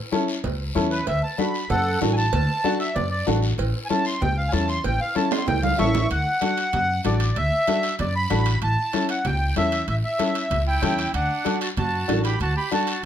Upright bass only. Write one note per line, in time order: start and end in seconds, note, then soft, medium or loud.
0.44 0.69 C#2 medium
0.75 1.00 E2 medium
1.07 1.20 D2 loud
1.70 1.95 F#2 loud
2.02 2.27 A1 loud
2.33 2.45 D2 loud
2.96 3.21 F#2 medium
3.27 3.52 A1 medium
3.58 3.71 A1 loud
4.22 4.47 C#2 loud
4.53 4.78 E2 medium
4.84 4.97 A1 loud
5.48 5.73 C#2 medium
5.79 6.04 A1 loud
6.11 6.23 D2 medium
6.73 6.98 F#2 medium
7.05 7.30 A1 medium
7.37 7.49 D2 loud
7.99 8.24 F#2 medium
8.31 8.56 A1 loud
8.62 8.75 A1 loud
9.25 9.50 C#2 loud
9.56 9.82 E2 medium
9.88 10.00 A1 medium
10.50 10.76 C#2 medium
10.82 11.08 E2 medium
11.14 11.27 D2 medium
11.77 12.03 F#2 medium
12.09 12.34 A1 medium
12.40 12.53 D2 loud